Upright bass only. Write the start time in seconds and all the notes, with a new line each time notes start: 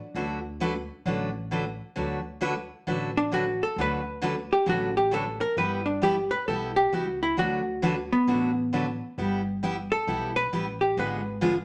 0.14 D2
1.05 A1
1.96 D2
2.87 A1
3.76 D2
4.66 A1
5.57 G1
6.48 B1
6.92 C#2
7.37 D2
8.27 A1
9.18 G1
10.07 B1
10.53 A1
10.97 G#1